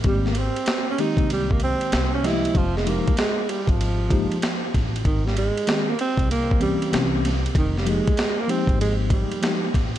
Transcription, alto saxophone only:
X:1
M:4/4
L:1/16
Q:"Swing 16ths" 1/4=96
K:Fm
V:1 name="Alto saxophone" clef=bass
G, B, C3 D E2 G, B, C3 D =E2 | F, A, B,2 A,2 G, F,6- F, z2 | E, G, A,3 B, C2 B,2 G,4 z2 | E, G, A,3 B, C2 A,2 G,4 z2 |]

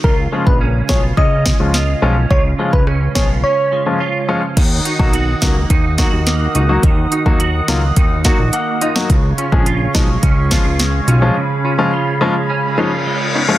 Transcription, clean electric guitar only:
X:1
M:4/4
L:1/16
Q:1/4=106
K:Ebm
V:1 name="Clean electric guitar"
[D,F]2 A,2 D2 F2 D2 A,2 F2 D2 | [D,F]2 A,2 D2 F2 D2 A,2 F2 D2 | E,2 E2 G2 B,2 E2 G2 B,2 E2 | E,2 E2 G2 B,2 E2 G2 B,2 E2 |
D,2 D2 F2 A,2 D2 F2 A,2 D2 | D,2 D2 F2 A,2 D2 F2 A,2 C D |]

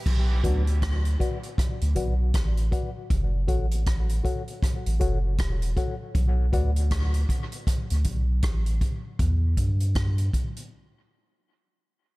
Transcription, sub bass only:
X:1
M:4/4
L:1/16
Q:"Swing 16ths" 1/4=79
K:Bm
V:1 name="Sub bass" clef=bass
B,,,2 D,,4 z3 D,, B,,,2 A,,,2 z2 | F,,,2 A,,,4 z3 A,,, F,,,2 E,,,2 z2 | B,,,2 D,,4 z3 D,, B,,,2 A,,,2 z2 | E,,2 G,,4 z8 z2 |]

